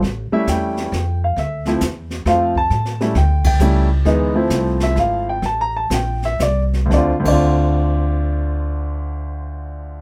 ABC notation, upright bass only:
X:1
M:3/4
L:1/8
Q:"Swing" 1/4=132
K:Dm
V:1 name="Upright bass" clef=bass
A,,, z E,,2 F,,2 | D,,2 E,,2 F,,2 | A,,2 D,,2 ^C,,2 | D,,2 C,,2 ^G,,,2 |
A,,,2 B,,,2 C,,2 | D,, D,,4- D,,- | D,,6 |]